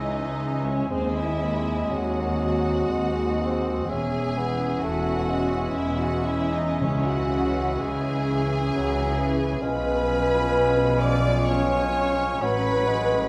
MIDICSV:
0, 0, Header, 1, 12, 480
1, 0, Start_track
1, 0, Key_signature, 4, "minor"
1, 0, Tempo, 998336
1, 435, Time_signature, 3, 2, 24, 8
1, 1873, Tempo, 933126
1, 2833, Tempo, 1025641
1, 3793, Tempo, 909091
1, 5233, Tempo, 934579
1, 6642, End_track
2, 0, Start_track
2, 0, Title_t, "Flute"
2, 0, Program_c, 0, 73
2, 0, Note_on_c, 0, 80, 49
2, 1853, Note_off_c, 0, 80, 0
2, 1878, Note_on_c, 0, 80, 49
2, 4602, Note_off_c, 0, 80, 0
2, 4757, Note_on_c, 0, 80, 59
2, 5698, Note_off_c, 0, 80, 0
2, 5718, Note_on_c, 0, 80, 60
2, 6199, Note_on_c, 0, 78, 61
2, 6207, Note_off_c, 0, 80, 0
2, 6642, Note_off_c, 0, 78, 0
2, 6642, End_track
3, 0, Start_track
3, 0, Title_t, "Violin section"
3, 0, Program_c, 1, 48
3, 0, Note_on_c, 1, 75, 49
3, 309, Note_on_c, 1, 73, 49
3, 313, Note_off_c, 1, 75, 0
3, 432, Note_on_c, 1, 72, 55
3, 433, Note_off_c, 1, 73, 0
3, 553, Note_off_c, 1, 72, 0
3, 555, Note_on_c, 1, 76, 49
3, 920, Note_off_c, 1, 76, 0
3, 924, Note_on_c, 1, 78, 56
3, 1868, Note_on_c, 1, 80, 65
3, 1874, Note_off_c, 1, 78, 0
3, 2353, Note_off_c, 1, 80, 0
3, 2355, Note_on_c, 1, 78, 61
3, 2832, Note_off_c, 1, 78, 0
3, 2836, Note_on_c, 1, 76, 50
3, 2945, Note_off_c, 1, 76, 0
3, 2949, Note_on_c, 1, 78, 57
3, 3068, Note_off_c, 1, 78, 0
3, 3069, Note_on_c, 1, 76, 56
3, 3193, Note_off_c, 1, 76, 0
3, 3198, Note_on_c, 1, 75, 56
3, 3325, Note_off_c, 1, 75, 0
3, 3329, Note_on_c, 1, 73, 57
3, 3452, Note_off_c, 1, 73, 0
3, 3453, Note_on_c, 1, 78, 57
3, 3795, Note_off_c, 1, 78, 0
3, 3795, Note_on_c, 1, 80, 66
3, 4752, Note_off_c, 1, 80, 0
3, 4754, Note_on_c, 1, 83, 76
3, 5473, Note_on_c, 1, 86, 70
3, 5475, Note_off_c, 1, 83, 0
3, 5714, Note_on_c, 1, 85, 57
3, 5716, Note_off_c, 1, 86, 0
3, 6193, Note_on_c, 1, 83, 80
3, 6196, Note_off_c, 1, 85, 0
3, 6642, Note_off_c, 1, 83, 0
3, 6642, End_track
4, 0, Start_track
4, 0, Title_t, "Oboe"
4, 0, Program_c, 2, 68
4, 0, Note_on_c, 2, 76, 49
4, 415, Note_off_c, 2, 76, 0
4, 439, Note_on_c, 2, 75, 47
4, 1873, Note_on_c, 2, 76, 48
4, 1881, Note_off_c, 2, 75, 0
4, 4655, Note_off_c, 2, 76, 0
4, 4745, Note_on_c, 2, 77, 60
4, 5692, Note_off_c, 2, 77, 0
4, 5722, Note_on_c, 2, 77, 60
4, 6196, Note_on_c, 2, 73, 64
4, 6204, Note_off_c, 2, 77, 0
4, 6642, Note_off_c, 2, 73, 0
4, 6642, End_track
5, 0, Start_track
5, 0, Title_t, "French horn section"
5, 0, Program_c, 3, 60
5, 0, Note_on_c, 3, 63, 51
5, 304, Note_on_c, 3, 61, 49
5, 312, Note_off_c, 3, 63, 0
5, 430, Note_off_c, 3, 61, 0
5, 432, Note_on_c, 3, 60, 54
5, 551, Note_on_c, 3, 64, 51
5, 553, Note_off_c, 3, 60, 0
5, 915, Note_on_c, 3, 66, 66
5, 918, Note_off_c, 3, 64, 0
5, 1866, Note_on_c, 3, 68, 63
5, 1869, Note_off_c, 3, 66, 0
5, 2257, Note_off_c, 3, 68, 0
5, 2344, Note_on_c, 3, 66, 66
5, 2817, Note_off_c, 3, 66, 0
5, 2828, Note_on_c, 3, 64, 56
5, 2938, Note_on_c, 3, 66, 57
5, 2941, Note_off_c, 3, 64, 0
5, 3061, Note_on_c, 3, 64, 55
5, 3062, Note_off_c, 3, 66, 0
5, 3189, Note_off_c, 3, 64, 0
5, 3189, Note_on_c, 3, 63, 53
5, 3312, Note_on_c, 3, 61, 62
5, 3320, Note_off_c, 3, 63, 0
5, 3436, Note_on_c, 3, 66, 59
5, 3444, Note_off_c, 3, 61, 0
5, 3781, Note_on_c, 3, 68, 68
5, 3786, Note_off_c, 3, 66, 0
5, 4745, Note_off_c, 3, 68, 0
5, 4750, Note_on_c, 3, 71, 82
5, 5473, Note_off_c, 3, 71, 0
5, 5475, Note_on_c, 3, 74, 73
5, 5638, Note_off_c, 3, 74, 0
5, 5710, Note_on_c, 3, 73, 61
5, 6184, Note_off_c, 3, 73, 0
5, 6196, Note_on_c, 3, 71, 81
5, 6642, Note_off_c, 3, 71, 0
5, 6642, End_track
6, 0, Start_track
6, 0, Title_t, "Violin section"
6, 0, Program_c, 4, 48
6, 0, Note_on_c, 4, 63, 59
6, 309, Note_on_c, 4, 61, 55
6, 314, Note_off_c, 4, 63, 0
6, 433, Note_off_c, 4, 61, 0
6, 436, Note_on_c, 4, 60, 59
6, 554, Note_on_c, 4, 64, 60
6, 555, Note_off_c, 4, 60, 0
6, 917, Note_on_c, 4, 66, 58
6, 920, Note_off_c, 4, 64, 0
6, 1870, Note_off_c, 4, 66, 0
6, 1870, Note_on_c, 4, 68, 71
6, 2344, Note_off_c, 4, 68, 0
6, 2351, Note_on_c, 4, 66, 66
6, 2822, Note_on_c, 4, 64, 66
6, 2830, Note_off_c, 4, 66, 0
6, 2941, Note_off_c, 4, 64, 0
6, 2943, Note_on_c, 4, 66, 60
6, 3064, Note_on_c, 4, 64, 66
6, 3065, Note_off_c, 4, 66, 0
6, 3191, Note_off_c, 4, 64, 0
6, 3192, Note_on_c, 4, 63, 64
6, 3321, Note_on_c, 4, 61, 67
6, 3322, Note_off_c, 4, 63, 0
6, 3446, Note_off_c, 4, 61, 0
6, 3448, Note_on_c, 4, 66, 65
6, 3792, Note_off_c, 4, 66, 0
6, 3800, Note_on_c, 4, 68, 72
6, 4755, Note_off_c, 4, 68, 0
6, 4760, Note_on_c, 4, 71, 84
6, 5475, Note_on_c, 4, 74, 85
6, 5477, Note_off_c, 4, 71, 0
6, 5717, Note_off_c, 4, 74, 0
6, 5723, Note_on_c, 4, 73, 75
6, 6200, Note_off_c, 4, 73, 0
6, 6201, Note_on_c, 4, 71, 91
6, 6642, Note_off_c, 4, 71, 0
6, 6642, End_track
7, 0, Start_track
7, 0, Title_t, "Clarinet"
7, 0, Program_c, 5, 71
7, 0, Note_on_c, 5, 61, 47
7, 417, Note_off_c, 5, 61, 0
7, 437, Note_on_c, 5, 60, 50
7, 1879, Note_on_c, 5, 61, 56
7, 1887, Note_off_c, 5, 60, 0
7, 4667, Note_off_c, 5, 61, 0
7, 4756, Note_on_c, 5, 61, 68
7, 5698, Note_off_c, 5, 61, 0
7, 5716, Note_on_c, 5, 61, 55
7, 6187, Note_off_c, 5, 61, 0
7, 6194, Note_on_c, 5, 61, 64
7, 6642, Note_off_c, 5, 61, 0
7, 6642, End_track
8, 0, Start_track
8, 0, Title_t, "Bassoon"
8, 0, Program_c, 6, 70
8, 0, Note_on_c, 6, 56, 51
8, 434, Note_off_c, 6, 56, 0
8, 437, Note_on_c, 6, 56, 51
8, 915, Note_on_c, 6, 54, 50
8, 922, Note_off_c, 6, 56, 0
8, 1396, Note_on_c, 6, 56, 45
8, 1403, Note_off_c, 6, 54, 0
8, 1640, Note_on_c, 6, 60, 47
8, 1647, Note_off_c, 6, 56, 0
8, 1873, Note_off_c, 6, 60, 0
8, 1876, Note_on_c, 6, 61, 52
8, 2119, Note_on_c, 6, 59, 53
8, 2127, Note_off_c, 6, 61, 0
8, 2353, Note_off_c, 6, 59, 0
8, 2356, Note_on_c, 6, 57, 53
8, 2592, Note_on_c, 6, 56, 57
8, 2599, Note_off_c, 6, 57, 0
8, 4147, Note_off_c, 6, 56, 0
8, 4281, Note_on_c, 6, 54, 54
8, 4520, Note_on_c, 6, 52, 55
8, 4528, Note_off_c, 6, 54, 0
8, 4749, Note_on_c, 6, 56, 55
8, 4757, Note_off_c, 6, 52, 0
8, 4984, Note_off_c, 6, 56, 0
8, 4987, Note_on_c, 6, 56, 64
8, 6176, Note_off_c, 6, 56, 0
8, 6196, Note_on_c, 6, 54, 62
8, 6428, Note_on_c, 6, 56, 66
8, 6435, Note_off_c, 6, 54, 0
8, 6642, Note_off_c, 6, 56, 0
8, 6642, End_track
9, 0, Start_track
9, 0, Title_t, "Viola section"
9, 0, Program_c, 7, 48
9, 0, Note_on_c, 7, 52, 42
9, 0, Note_on_c, 7, 61, 42
9, 181, Note_off_c, 7, 61, 0
9, 182, Note_off_c, 7, 52, 0
9, 190, Note_on_c, 7, 61, 37
9, 193, Note_on_c, 7, 52, 39
9, 429, Note_off_c, 7, 61, 0
9, 430, Note_off_c, 7, 52, 0
9, 432, Note_on_c, 7, 60, 40
9, 434, Note_on_c, 7, 56, 41
9, 672, Note_off_c, 7, 60, 0
9, 673, Note_off_c, 7, 56, 0
9, 681, Note_on_c, 7, 56, 42
9, 681, Note_on_c, 7, 60, 47
9, 1152, Note_off_c, 7, 56, 0
9, 1152, Note_off_c, 7, 60, 0
9, 1159, Note_on_c, 7, 60, 44
9, 1161, Note_on_c, 7, 56, 45
9, 1628, Note_off_c, 7, 60, 0
9, 1629, Note_off_c, 7, 56, 0
9, 1639, Note_on_c, 7, 56, 43
9, 1641, Note_on_c, 7, 60, 41
9, 1868, Note_off_c, 7, 56, 0
9, 1869, Note_off_c, 7, 60, 0
9, 2111, Note_on_c, 7, 61, 46
9, 2113, Note_on_c, 7, 52, 44
9, 2581, Note_off_c, 7, 61, 0
9, 2582, Note_off_c, 7, 52, 0
9, 2588, Note_on_c, 7, 61, 44
9, 2590, Note_on_c, 7, 52, 46
9, 3055, Note_off_c, 7, 52, 0
9, 3055, Note_off_c, 7, 61, 0
9, 3060, Note_on_c, 7, 52, 44
9, 3062, Note_on_c, 7, 61, 42
9, 3314, Note_off_c, 7, 52, 0
9, 3315, Note_off_c, 7, 61, 0
9, 3320, Note_on_c, 7, 52, 44
9, 3321, Note_on_c, 7, 61, 47
9, 3558, Note_off_c, 7, 61, 0
9, 3559, Note_off_c, 7, 52, 0
9, 3564, Note_on_c, 7, 61, 50
9, 3565, Note_on_c, 7, 52, 51
9, 4030, Note_off_c, 7, 61, 0
9, 4031, Note_off_c, 7, 52, 0
9, 4038, Note_on_c, 7, 52, 53
9, 4040, Note_on_c, 7, 61, 50
9, 4508, Note_off_c, 7, 52, 0
9, 4509, Note_off_c, 7, 61, 0
9, 4517, Note_on_c, 7, 52, 48
9, 4519, Note_on_c, 7, 61, 44
9, 4743, Note_off_c, 7, 61, 0
9, 4745, Note_off_c, 7, 52, 0
9, 4750, Note_on_c, 7, 53, 59
9, 4750, Note_on_c, 7, 61, 59
9, 6176, Note_off_c, 7, 53, 0
9, 6195, Note_on_c, 7, 54, 62
9, 6642, Note_off_c, 7, 54, 0
9, 6642, Note_off_c, 7, 61, 0
9, 6642, End_track
10, 0, Start_track
10, 0, Title_t, "Timpani"
10, 0, Program_c, 8, 47
10, 3326, Note_on_c, 8, 49, 56
10, 4023, Note_off_c, 8, 49, 0
10, 6642, End_track
11, 0, Start_track
11, 0, Title_t, "Cello section"
11, 0, Program_c, 10, 48
11, 0, Note_on_c, 10, 37, 52
11, 380, Note_off_c, 10, 37, 0
11, 436, Note_on_c, 10, 39, 54
11, 865, Note_off_c, 10, 39, 0
11, 919, Note_on_c, 10, 39, 56
11, 1342, Note_off_c, 10, 39, 0
11, 1396, Note_on_c, 10, 39, 53
11, 1816, Note_off_c, 10, 39, 0
11, 1869, Note_on_c, 10, 40, 55
11, 2297, Note_off_c, 10, 40, 0
11, 2354, Note_on_c, 10, 40, 55
11, 2774, Note_off_c, 10, 40, 0
11, 2834, Note_on_c, 10, 40, 56
11, 3262, Note_off_c, 10, 40, 0
11, 3322, Note_on_c, 10, 49, 56
11, 3740, Note_off_c, 10, 49, 0
11, 3793, Note_on_c, 10, 49, 61
11, 4228, Note_off_c, 10, 49, 0
11, 4287, Note_on_c, 10, 49, 61
11, 4697, Note_off_c, 10, 49, 0
11, 4753, Note_on_c, 10, 47, 60
11, 6177, Note_off_c, 10, 47, 0
11, 6202, Note_on_c, 10, 45, 66
11, 6642, Note_off_c, 10, 45, 0
11, 6642, End_track
12, 0, Start_track
12, 0, Title_t, "Double bass section"
12, 0, Program_c, 11, 48
12, 0, Note_on_c, 11, 37, 51
12, 377, Note_off_c, 11, 37, 0
12, 432, Note_on_c, 11, 39, 55
12, 863, Note_off_c, 11, 39, 0
12, 919, Note_on_c, 11, 39, 50
12, 1342, Note_off_c, 11, 39, 0
12, 1398, Note_on_c, 11, 39, 54
12, 1817, Note_off_c, 11, 39, 0
12, 1869, Note_on_c, 11, 28, 57
12, 2297, Note_off_c, 11, 28, 0
12, 2349, Note_on_c, 11, 28, 53
12, 2772, Note_off_c, 11, 28, 0
12, 2832, Note_on_c, 11, 28, 55
12, 3261, Note_off_c, 11, 28, 0
12, 3324, Note_on_c, 11, 37, 57
12, 3741, Note_off_c, 11, 37, 0
12, 3794, Note_on_c, 11, 37, 54
12, 4229, Note_off_c, 11, 37, 0
12, 4287, Note_on_c, 11, 37, 55
12, 4698, Note_off_c, 11, 37, 0
12, 4753, Note_on_c, 11, 35, 56
12, 6177, Note_off_c, 11, 35, 0
12, 6197, Note_on_c, 11, 33, 63
12, 6642, Note_off_c, 11, 33, 0
12, 6642, End_track
0, 0, End_of_file